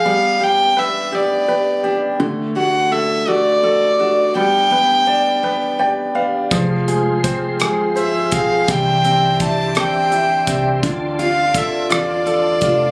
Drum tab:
HH |------|------|------|xxxxxx|
SD |------|------|------|--rr--|
BD |------|------|------|o-o--o|

HH |xxxxxx|xxxxxx|
SD |---r--|---r--|
BD |o-o--o|o-o--o|